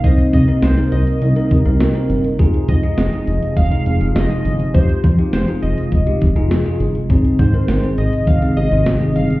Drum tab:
HH |xxxxxxxxxxxxxxxx|xxxxxxxxxxxxxxxx|xxxxxxxxxxxxxxxx|xxxxxxxxxxxxxxxx|
SD |----o-------o---|----o-------o---|----o-------o---|----o-------o---|
BD |o-o-------o-----|o-o-----o-------|o-o-----o-o-----|o-o-----o-------|